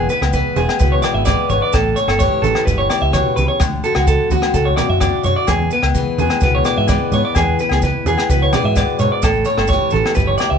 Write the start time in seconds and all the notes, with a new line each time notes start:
Already playing: E2 E3 B3
0.09 B3 B4, closed hi-hat, muted conga, maracas
0.22 C#2, muted clean electric guitar stroke, cross-stick, low agogo
0.33 E3 G#4 B4, kick, maracas
0.56 E1 B3 G#4, closed hi-hat, high conga, maracas
0.69 cross-stick, low agogo
0.79 C#2 B2 B4, kick, maracas
0.92 C#5
1.02 G#4 D5, cross-stick, closed hi-hat, high conga, low agogo, maracas
1.14 G#1 E5
1.25 E3 D5, kick, cross-stick, high conga, low agogo, maracas
1.30 G#3
1.50 G#1 B3 C#5, closed hi-hat, muted conga, low conga, maracas
1.62 D5
1.73 A1 A2 A4, kick, cross-stick, low agogo, maracas
1.96 C#4 C#5, closed hi-hat, muted conga, maracas
2.08 G1 A4, cross-stick, low agogo
2.19 E3 G4 C#5, kick, maracas
2.42 A1 A4, closed hi-hat, high conga, maracas
2.46 C#4
2.55 cross-stick, low agogo
2.66 G1 E2 B4, kick, muted conga, maracas
2.78 C#5
2.90 G4 D5, cross-stick, closed hi-hat, low agogo, maracas
3.01 C#2 E5
3.13 B2 C#5, kick, cross-stick, high conga, low agogo, maracas
3.36 C#2 C#3 B4, closed hi-hat, muted conga, high conga, maracas
3.48 C#5
3.60 D2 D3, muted clean electric guitar stroke, kick, cross-stick, low agogo, maracas
3.84 F#4 A4, closed hi-hat, muted conga, maracas
3.95 C#2 F#4, cross-stick, low agogo
4.07 F#4 A4, muted steel-string acoustic guitar stroke, kick, maracas
4.30 D2 F#4, closed hi-hat, high conga, maracas
4.42 cross-stick, low agogo
4.53 C#2 A2 A4, kick, maracas
4.65 C#5
4.76 F#4 D5, cross-stick, closed hi-hat, high conga, low conga, low agogo, maracas
4.89 F#2 E5
5.01 A3 D4 D5, kick, cross-stick, high conga, low agogo, maracas
5.23 F#2 F#4 C#5, closed hi-hat, muted conga, low conga, maracas
5.36 D5
5.47 E2 G#4, kick, cross-stick, low agogo, maracas
5.71 B3 B4, closed hi-hat, muted conga, maracas
5.83 C#2, cross-stick, low agogo
5.95 E3 G#4, kick, maracas
6.18 E2 B3 G#4, closed hi-hat, high conga, maracas
6.30 cross-stick, low agogo
6.41 C#2 B2 B4, kick, muted conga, maracas
6.55 C#5
6.65 G#4 D5, cross-stick, closed hi-hat, low agogo, maracas
6.77 G#2 E5
6.88 E3 G#3 D5, kick, cross-stick, high conga, low agogo, maracas
7.12 G#2 B3 C#5, closed hi-hat, muted conga, high conga, maracas
7.25 D5
7.35 E2 G#4, kick, cross-stick, muted conga, low agogo, maracas
7.58 B4, muted steel-string acoustic guitar stroke, closed hi-hat, muted conga, maracas
7.69 C#2 G#4, cross-stick, low agogo
7.82 E3 B4, kick, maracas
8.05 E2 B3 G#4, closed hi-hat, high conga, maracas
8.18 cross-stick, low agogo
8.29 C#2 B2 B4, kick, muted conga, maracas
8.42 C#5
8.53 G#4 D5, cross-stick, closed hi-hat, high conga, low conga, low agogo, maracas
8.64 G#2 E5
8.76 F#2 D5, kick, cross-stick, high conga, low agogo, maracas
8.99 G#2 C#5, closed hi-hat, muted conga, low conga, maracas
9.12 D5
9.22 A1 A2 A4, kick, cross-stick, low agogo, maracas
9.45 C#5, closed hi-hat, muted conga, maracas
9.50 C#4
9.57 G1 A4, cross-stick, low agogo
9.67 C#5, kick, maracas
9.73 E3 G4
9.90 A1 A4, closed hi-hat, high conga, maracas
9.96 C#4
10.05 cross-stick, low agogo
10.15 G1 B4, kick, maracas
10.20 E2
10.27 C#5
10.38 D5, cross-stick, closed hi-hat, low agogo, maracas
10.42 G4
10.50 C#2 E5